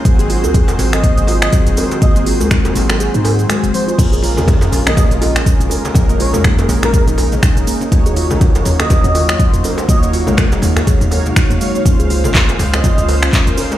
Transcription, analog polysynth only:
X:1
M:4/4
L:1/8
Q:"Swing 16ths" 1/4=122
K:Bbm
V:1 name="Analog polysynth"
[CGA]6 [CGA]2 | [CGA]6 [CGA]2 | [DAB]6 [DAB]2 | [DAB]6 [DA]2 |
[EGd]6 [EGc]2 | [EGd]4- [EGd] [EGd]2 [EGd] | [DFc]6 [DB]2 |]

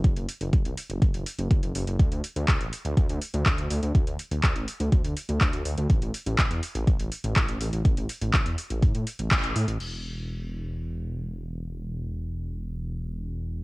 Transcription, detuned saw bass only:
X:1
M:4/4
L:1/16
Q:1/4=123
K:Ador
V:1 name="Detuned saw bass" clef=bass
F,,, F,,, z F,,, F,,, C,, z F,,, F,,, F,,, z F,,, F,,, F,,, F,,, F,,, | D,, D,, z D,, D,, A,,, z D,, D,, D,, z D,, D,, D,, D,, D,, | D,, D,, z D,, D,, A,,, z D,, D,, D,, z D,, D,, D,, D,, D,, | A,,, A,,, z A,,, A,,, E,, z A,,, A,,, A,,, z A,,, A,,, A,,, A,,, A,,, |
A,,, A,,, z A,,, A,,, E,, z A,,, A,, A,, z A,,, A,,, A,,, A,, A,,, | E,,,16- | E,,,16 |]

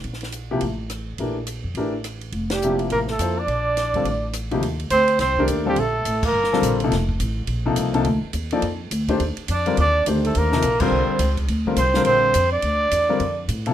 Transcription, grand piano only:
X:1
M:4/4
L:1/8
Q:"Swing" 1/4=210
K:Dm
V:1 name="Grand piano"
z3 [C,F,B,EG] z4 | [E,A,DGB] z3 [E,A,DGB] z3 | z2 [C,F,B,EG]3 z [F,B,EAc] z | z3 [D,G,CFA] z3 [D,,C,F,B,_EG] |
[K:Eblyd] z4 z [E,A,DGB]2 [D,G,CFA] | z4 z [D,G,CFA]2 [C,F,B,EA] | z4 z [C,F,B,EA]2 [C,F,B,EA] | z3 [F,B,EAd] z3 [E,A,DGc] |
z3 [D,G,CFB] z2 [E,A,DGc]2- | [E,A,DGc] [C,F,B,EA] z [D,G,CFB]3 z2 | z [D,G,CFB] z [D,G,CFB]3 z2 | z3 [D,G,CFB] z3 [C,F,B,_FA] |]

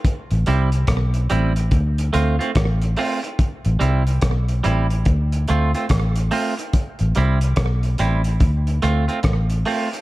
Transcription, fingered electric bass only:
X:1
M:4/4
L:1/16
Q:"Swing 16ths" 1/4=72
K:Am
V:1 name="Fingered electric bass" clef=bass
z A,,, C,,2 B,,,2 A,,,2 D,,2 D,, z A,,,2 z2 | z A,,, C,,2 B,,,2 A,,,2 D,,2 D,, z A,,,2 z2 | z A,,, C,,2 B,,,2 A,,,2 D,,2 D,, z A,,,2 z2 |]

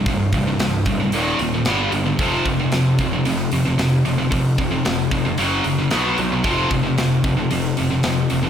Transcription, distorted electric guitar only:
X:1
M:4/4
L:1/16
Q:1/4=113
K:Fdor
V:1 name="Distorted electric guitar" clef=bass
[C,,G,,]2 [C,,G,,] [C,,G,,] [C,,G,,]2 [C,,G,,] [C,,G,,] [E,,B,,E,]2 [E,,B,,] [E,,B,,] [G,,D,G,]2 [G,,D,] [G,,D,] | [F,,C,F,]2 [F,,C,] [F,,C,] [F,,C,]2 [F,,C,] [F,,C,] [F,,C,]2 [F,,C,] [F,,C,] [F,,C,]2 [F,,C,] [F,,C,] | [F,,C,]2 [F,,C,] [F,,C,] [F,,C,]2 [F,,C,] [F,,C,] [^F,,^C,^F,]2 [F,,C,] [F,,C,] [=B,,F,=B,]2 [B,,F,] [B,,F,] | [F,,C,F,]2 [F,,C,] [F,,C,] [F,,C,]2 [F,,C,] [F,,C,] [F,,C,]2 [F,,C,] [F,,C,] [F,,C,]2 [F,,C,] [F,,C,] |]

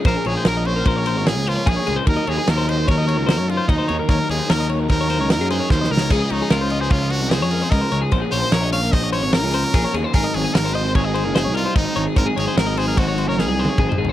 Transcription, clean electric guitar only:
X:1
M:5/4
L:1/16
Q:1/4=149
K:Ebdor
V:1 name="Clean electric guitar"
c A d c B e d B c d c d B A c d A d A c | B e d A B c e c d e d B c d B c e c d B | d B d c B e d B c d c d B A c d B e B d | A e d A B c e c d e d B c d B c e c d A |
c A d c B e d B c d c d B A c d A d A c | A e d A B c e c d e c B c d B c e c d A | c A d c B e c B c d c d B A c d A c A c |]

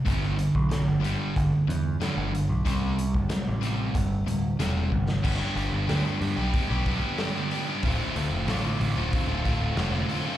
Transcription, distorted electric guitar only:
X:1
M:4/4
L:1/16
Q:1/4=93
K:Gmix
V:1 name="Distorted electric guitar" clef=bass
[G,,D,G,]2 [G,,D,]2 [G,,D,]2 [G,,D,G,]2 [G,,D,]2 [G,,D,]2 [G,,D,G,]2 [G,,D,]2 | [C,G,C]2 [C,G,]2 [C,G,]2 [C,G,C]2 [C,G,]2 [C,G,]2 [C,G,C]2 [C,G,]2 | [G,,D,G,B,DG]2 [G,B,DG]2 [G,,D,G,B,DG]2 [G,B,DG] [G,B,DG]2 [G,B,DG] [G,B,DG]2 [G,,D,G,B,DG] [G,B,DG] [G,B,DG] [G,B,DG] | [D,,A,,D,A,CF]2 [D,A,CF]2 [D,,A,,D,A,CF]2 [D,A,CF] [D,A,CF]2 [D,A,CF] [D,A,CF]2 [D,,A,,D,A,CF] [D,A,CF] [D,A,CF] [D,A,CF] |]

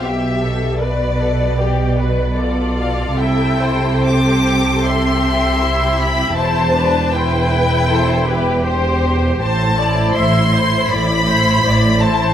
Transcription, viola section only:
X:1
M:4/4
L:1/8
Q:1/4=79
K:C
V:1 name="Viola section"
G2 B2 G B d2 | e c3 e4 | c B c B c B c2 | [K:Am] c d e c d c d c |]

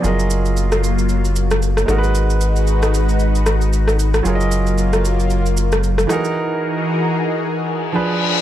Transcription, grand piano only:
X:1
M:4/4
L:1/8
Q:"Swing 16ths" 1/4=114
K:F#
V:1 name="Grand piano"
[F,EGAd]6- [F,EGAd] [G,DFAB]- | [G,DFAB]6- [G,DFAB] z | [F,EGAcd]6- [F,EGAcd] [=E,DFGA]- | [=E,DFGA]6 [=F,=D_A_c]2 |]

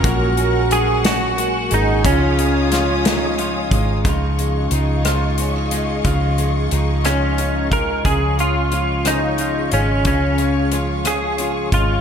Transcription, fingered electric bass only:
X:1
M:6/8
L:1/8
Q:3/8=60
K:Db
V:1 name="Fingered electric bass" clef=bass
B,,,4- B,,, A,,, | D,,4- D,, A,,, | D,,2 D,,4 | D,,2 D,,4 |
D,,4- D,, A,,, | D,,4- D,, A,,, |]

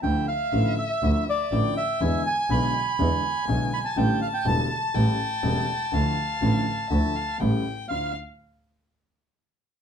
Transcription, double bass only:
X:1
M:4/4
L:1/8
Q:1/4=122
K:Dm
V:1 name="Double bass" clef=bass
D,, z A,,, z D,, z A,,, z | E,, z =B,,, z E,, z B,,, z | A,,, z E,,, z A,,, z E,,, z | D,, z A,,, z D,, z A,,, z |
D,, z6 z |]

